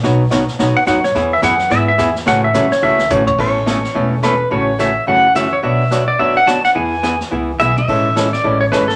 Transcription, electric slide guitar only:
X:1
M:4/4
L:1/8
Q:"Swing" 1/4=214
K:A
V:1 name="Electric slide guitar"
z4 z f f c- | c e f2 e e2 z | f e2 c e2 c c | z8 |
z8 | z8 | z8 | z8 |]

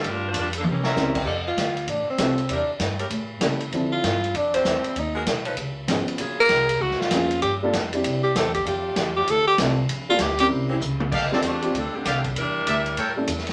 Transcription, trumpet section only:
X:1
M:4/4
L:1/8
Q:"Swing" 1/4=195
K:F
V:1 name="Trumpet section"
z4 z [Bc_de]3 | z8 | z8 | z8 |
z8 | z8 | z8 | z8 |
z8 | [GAdf] z4 z [GAdf] z | z2 [GBde] z [AB^cg] z3 |]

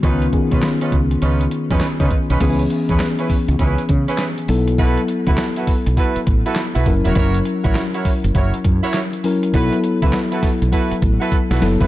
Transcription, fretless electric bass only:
X:1
M:4/4
L:1/16
Q:"Swing 16ths" 1/4=101
K:C#m
V:1 name="Fretless electric bass" clef=bass
C,,2 z B,,, z2 C,,2 C,,2 z ^E,, z C, z B,,, | C,,2 z E,, z3 C,, C,, z C, z3 B,,,2- | B,,,2 z C,, z3 B,,, z2 A,,, z2 B,,, F,,, E,,, | F,,,2 z A,,, z3 F,,, F,,, z F,, z4 z |
B,,, z2 C,, z3 B,,, z2 A,,, z2 B,,, F,,, G,,, |]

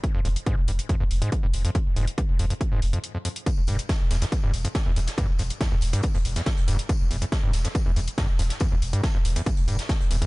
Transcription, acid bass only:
X:1
M:4/4
L:1/16
Q:1/4=140
K:none
V:1 name="Acid bass" clef=bass
z F,, F,, z _A,, z G,, z F,, F,, z A,, z G,, z F,, | F,, z _A,, z G,, z F,, F,, z A,, z F,, z F,, F,, z | E,, z G,, z F,, z E,, E,, z G,, z F,, z E,, E,, z | G,, z F,, z E,, E,, z G,, z F,, z E,, E,, z G,, z |
F,, z E,, E,, z G,, z F,, z E,, E,, z G,, z F,, z | E,, E,, z G,, z F,, z E,, E,, z G,, z F,, z E,, E,, |]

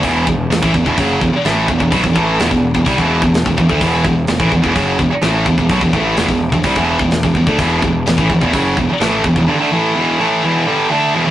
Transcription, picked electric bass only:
X:1
M:4/4
L:1/16
Q:1/4=127
K:Em
V:1 name="Picked electric bass" clef=bass
E,,,2 E,,,2 E,,, A,,, E,,, E,,, F,,,2 E,,, z A,,,2 E,,, E,,, | B,,, E,,, A,,,2 E,,, E,,,2 E,,, C,, E,,,2 E,,,2 E,,, E,,, D,, | E,,,2 E,,,2 E,,, A,,, E,,, E,,, F,,,2 E,,, z A,,,2 E,,, E,,, | B,,, E,,, A,,,2 E,,, E,,,2 E,,, C,, E,,,2 E,,,2 E,,, E,,, D,, |
E,,,2 E,,,2 E,,, A,,, E,,, E,,, F,,,2 E,,, z A,,,2 E,,, E,,, | z16 |]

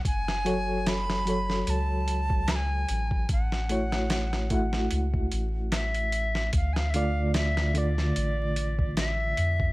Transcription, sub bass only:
X:1
M:4/4
L:1/8
Q:"Swing 16ths" 1/4=74
K:F#m
V:1 name="Sub bass" clef=bass
F,,,4 C,,3 A,,, | A,,,4 C,, A,,,3 | D,,4 A,,,3 =F,, |]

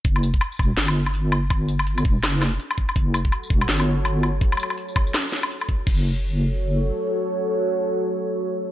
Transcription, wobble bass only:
X:1
M:4/4
L:1/8
Q:"Swing 16ths" 1/4=165
K:F#phr
V:1 name="Wobble bass" clef=bass
F,,,2 z E,,, G,,,4- | G,,,3 E,,, F,,,2 z2 | F,,,2 z E,,, G,,,4 | z8 |
F,,,6 z2 | z8 |]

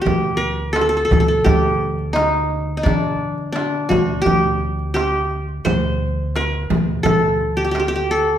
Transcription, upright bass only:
X:1
M:4/4
L:1/8
Q:1/4=86
K:none
V:1 name="Upright bass" clef=bass
D,,3 D,, D,,4 | D,3 D,, D,,4 | D,,3 D,, D,,4 |]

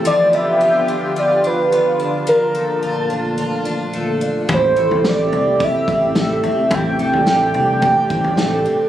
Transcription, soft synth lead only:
X:1
M:4/4
L:1/8
Q:1/4=108
K:Am
V:1 name="Soft synth lead"
d e3 d B2 z | _B3 z4 z | c2 d2 e2 e2 | g2 g4- g z |]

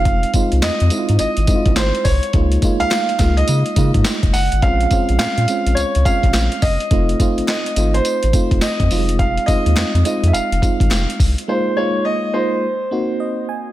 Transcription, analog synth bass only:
X:1
M:4/4
L:1/16
Q:"Swing 16ths" 1/4=105
K:Fphr
V:1 name="Analog synth bass" clef=bass
F,,,2 z C,, F,, F,, z A,, A,,, A,,, z B,,, A,,, z C,, z | D,,2 z D,, z2 D,,2 D, z D, A,, z F,,, G,,, A,,, | B,,,2 z B,,, B,, B,, z B,,, D,, D,, z B,,, B,,, z G,,, z | F,,,2 z A,,, z2 A,,,2 z =A,,, z F,,, z F,, F,,,2- |
F,,,2 z E,, F,, F,, z F,, F,,, F,,, z A,,, F,,, z C,, z | z16 |]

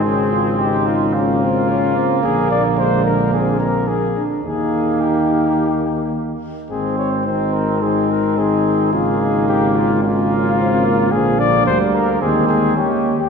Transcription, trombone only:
X:1
M:4/4
L:1/8
Q:1/4=109
K:Bbdor
V:1 name="Trombone" clef=bass
D,8 | =D,6- D, z | E,6- E, z | E,2 E,2 E,2 E,2 |
D,4 D,4 | =D,4 E,2 E, z |]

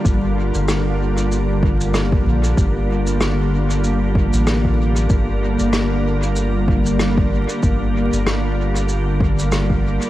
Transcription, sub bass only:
X:1
M:4/4
L:1/16
Q:"Swing 16ths" 1/4=95
K:Gm
V:1 name="Sub bass" clef=bass
G,,,3 G,,,8- G,,,3 B,,,2 | G,,,8- G,,,3 A,,,4- A,,, | G,,,3 G,,,12 z | G,,,3 G,,,12 z |]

